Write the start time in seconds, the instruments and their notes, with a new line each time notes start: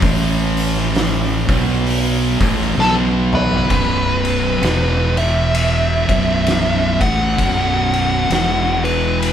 0.02 fingered electric bass A1, distorted electric guitar A2 E3 A3, kick, open hi-hat
0.57 open hi-hat
0.78 snare
0.95 snare, open hi-hat
1.48 fingered electric bass B1, distorted electric guitar B2 F#3 B3, kick, open hi-hat
1.86 open hi-hat
2.40 fingered electric bass A1, distorted electric guitar A2 E3 A3, kick, open hi-hat
2.61 snare
2.77 fingered electric bass B1, distorted electric guitar B2 F#3 B3, lead electric guitar A4, snare
3.33 lead electric guitar B4, mid tom
3.51 floor tom
3.70 fingered electric bass B0, distorted electric guitar B1 F#2 B2, kick, ride
4.25 ride
4.61 fingered electric bass E1, distorted electric guitar E2 B2 E3, snare, ride
5.17 lead electric guitar E5, ride
5.55 ride
6.09 fingered electric bass B0, distorted electric guitar B1 F#2 B2, kick, ride
6.47 snare, ride
7.01 fingered electric bass A1, distorted electric guitar A2 E3 A3, lead electric guitar F#5, kick, ride
7.38 fingered electric bass B0, distorted electric guitar B1 F#2 B2, kick, ride
7.94 ride
8.30 fingered electric bass E1, distorted electric guitar E2 B2 E3, snare, ride
8.84 lead electric guitar B4, ride
9.22 ride